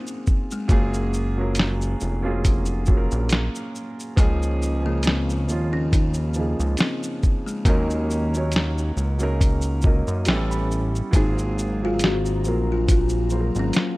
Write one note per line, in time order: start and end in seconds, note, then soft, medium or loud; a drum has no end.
0.00 0.68 F#3 medium
0.00 0.69 A#3 medium
0.00 0.54 C4 medium
0.00 0.71 C4 medium
0.00 0.71 F4 medium
0.00 0.71 G#4 medium
0.07 shaker medium
0.27 kick medium
0.27 shaker soft
0.51 0.71 G#3 medium
0.51 shaker soft
0.68 1.96 F#1 loud
0.68 1.24 F#3 loud
0.68 1.24 A#3 medium
0.68 2.40 A#3 medium
0.68 1.25 C#4 medium
0.68 1.25 F4 medium
0.68 kick loud
0.68 closed hi-hat medium
0.68 shaker medium
0.72 1.26 G#4 loud
0.94 shaker medium
1.14 shaker medium
1.37 2.07 F#3 medium
1.37 2.08 A#3 medium
1.37 2.08 C#4 medium
1.37 2.09 F4 medium
1.37 2.09 A#4 medium
1.55 closed hi-hat medium
1.55 shaker medium
1.59 snare loud
1.81 shaker soft
2.00 3.08 F1 medium
2.00 shaker soft
2.22 2.76 F#3 medium
2.22 2.76 A#3 medium
2.22 2.77 C#4 medium
2.22 2.77 F4 medium
2.26 2.78 G#4 medium
2.45 kick medium
2.45 closed hi-hat medium
2.45 shaker medium
2.65 shaker medium
2.86 3.97 F#3 medium
2.86 3.97 A#3 medium
2.86 3.98 C#4 medium
2.86 3.98 F4 medium
2.86 kick loud
2.86 shaker soft
2.90 2.96 G#4 medium
2.97 4.02 A#4 medium
3.11 3.49 A#1 medium
3.11 shaker soft
3.29 snare loud
3.29 closed hi-hat medium
3.29 shaker medium
3.55 shaker medium
3.75 shaker soft
4.00 shaker soft
4.16 5.50 C#2 loud
4.16 4.72 F3 loud
4.16 4.87 G#3 loud
4.16 4.72 A#3 medium
4.16 4.73 C#4 medium
4.16 4.73 D#4 medium
4.16 4.74 G#4 loud
4.16 kick loud
4.16 closed hi-hat medium
4.16 shaker medium
4.42 shaker soft
4.62 shaker medium
4.82 5.37 C#3 medium
4.82 5.36 F3 medium
4.82 5.37 A#3 medium
4.82 5.05 A#3 medium
4.82 5.38 D#4 medium
4.82 5.38 G#4 medium
5.03 5.74 C4 medium
5.03 closed hi-hat medium
5.03 shaker medium
5.07 snare loud
5.30 shaker soft
5.47 6.55 D#2 medium
5.47 6.21 F3 medium
5.47 6.21 A#3 medium
5.47 6.22 C#4 medium
5.47 6.23 D#4 medium
5.47 6.23 F4 medium
5.47 shaker soft
5.73 5.92 C#4 loud
5.93 6.82 D#4 loud
5.93 kick medium
5.93 closed hi-hat medium
5.93 shaker medium
6.14 shaker medium
6.34 7.46 C#3 medium
6.34 7.45 F3 medium
6.34 7.46 A#3 medium
6.34 shaker soft
6.39 7.47 D#4 medium
6.39 7.47 G#4 medium
6.60 6.76 C#2 medium
6.60 shaker soft
6.77 7.48 C4 medium
6.77 snare loud
6.77 closed hi-hat medium
6.77 shaker medium
7.03 shaker medium
7.23 kick medium
7.23 shaker soft
7.46 7.66 G#3 medium
7.46 shaker soft
7.65 8.92 D#2 loud
7.65 8.21 F#3 medium
7.65 9.35 A#3 medium
7.65 8.21 A#3 medium
7.65 8.22 C#4 medium
7.65 8.22 D#4 medium
7.65 kick loud
7.65 closed hi-hat medium
7.65 shaker medium
7.70 8.22 A#4 loud
7.90 shaker soft
8.10 shaker medium
8.34 9.04 F#3 medium
8.34 9.04 A#3 medium
8.34 9.05 C#4 medium
8.34 9.05 D#4 medium
8.34 9.06 C#5 medium
8.34 shaker soft
8.52 closed hi-hat medium
8.52 shaker medium
8.56 snare loud
8.78 shaker soft
8.97 10.03 C#2 medium
8.97 shaker medium
9.19 9.72 F#3 medium
9.19 9.73 A#3 medium
9.19 9.73 C#4 medium
9.19 9.74 D#4 medium
9.19 shaker soft
9.23 9.74 A#4 loud
9.41 kick medium
9.41 closed hi-hat medium
9.41 shaker medium
9.61 shaker medium
9.82 10.26 F#3 medium
9.82 10.27 A#3 medium
9.82 10.27 C#4 medium
9.82 10.24 D#5 medium
9.82 kick loud
9.82 shaker soft
9.86 10.28 D#4 medium
9.86 10.28 A#4 medium
10.07 10.29 F#2 medium
10.07 shaker soft
10.25 11.02 A1 loud
10.25 11.00 G3 medium
10.25 11.00 B3 medium
10.25 11.01 C#4 medium
10.25 11.01 E4 medium
10.25 10.50 G5 medium
10.25 snare loud
10.25 closed hi-hat medium
10.25 shaker medium
10.30 11.02 A4 medium
10.51 11.09 B5 medium
10.51 shaker medium
10.71 shaker soft
10.95 shaker soft
11.11 12.46 G#1 loud
11.11 11.67 F#3 loud
11.11 13.97 F#3 medium
11.11 11.68 A#3 medium
11.11 11.68 C4 medium
11.11 11.69 F4 medium
11.11 13.97 C5 medium
11.11 13.97 F5 medium
11.11 13.97 A#5 medium
11.11 kick loud
11.11 closed hi-hat medium
11.11 shaker medium
11.15 11.84 D#4 loud
11.15 11.69 G#4 loud
11.38 shaker soft
11.58 shaker medium
11.82 12.34 F#3 medium
11.82 12.34 A#3 medium
11.82 12.35 C4 medium
11.82 12.03 F4 medium
11.82 12.36 G#4 medium
11.82 12.35 F5 medium
11.99 closed hi-hat medium
11.99 shaker medium
12.04 12.71 F#4 loud
12.04 snare loud
12.25 shaker soft
12.44 13.51 A#1 loud
12.44 13.17 F#3 medium
12.44 13.18 A#3 medium
12.44 13.18 C4 medium
12.44 13.19 F4 medium
12.44 13.19 A#4 medium
12.44 shaker medium
12.72 12.90 F4 medium
12.89 13.59 F4 loud
12.89 kick loud
12.89 closed hi-hat medium
12.89 shaker medium
13.09 shaker medium
13.30 13.97 F#3 medium
13.30 13.97 A#3 medium
13.30 13.97 F4 medium
13.30 13.97 C5 medium
13.30 shaker soft
13.34 13.40 G#4 medium
13.41 13.97 A#4 medium
13.55 13.72 G#1 medium
13.55 shaker soft
13.59 13.97 C#4 medium
13.73 snare loud
13.73 closed hi-hat medium
13.73 shaker medium